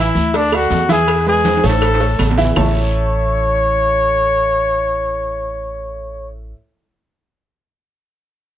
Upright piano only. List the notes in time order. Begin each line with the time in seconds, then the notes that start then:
Already playing: E3 E4 E5
0.34 A3 A4 D5
0.52 A3 A4 D5
0.89 E3 E4 E5
1.26 G#3 G#4 B4
1.63 A3 A4 C#5
2.00 A3 A4 C#5
2.37 E3 E4 E5
2.56 A3 E4 A4 C#5 E5 A5